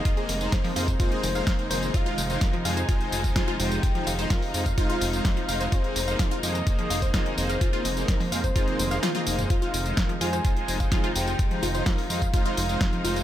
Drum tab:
HH |xxoxxooxxxoxxxox|xxoxxxo-xxoxxxox|xxoxxooxxxoxxxox|xxoxxxoxxxo-xxox|
TB |x-xxx-xxx-xxx-xx|x-xxx-xxx-xxx-xx|x-xxx-xxx-xxx-xx|x-xxx-xxx-xxx-xx|
SD |----o-o-----o---|----o-------o---|----o-------o---|----o-------o---|
T1 |----------------|----------------|----------------|----------------|
T2 |----------------|----------------|----------------|----------------|
BD |o---o--oo---o---|o---o---o--oo---|o---o--oo---o---|o---o---o--oo---|

HH |xxoxxooxxxoxxxox|xxoxxxoxxxoxxxox|xxoxxooxxxoxxxox|
TB |x-xxx-xxx-xxx-xx|x-xxx-xxx-xxx-xx|x-xxx-xxx-xxx-xx|
SD |----o-------o---|----o-------o---|----o-------o---|
T1 |------------oo--|----------------|----------------|
T2 |---------------o|----------------|----------------|
BD |o---o--oo-------|o---o---o--oo---|o---o--oo---o---|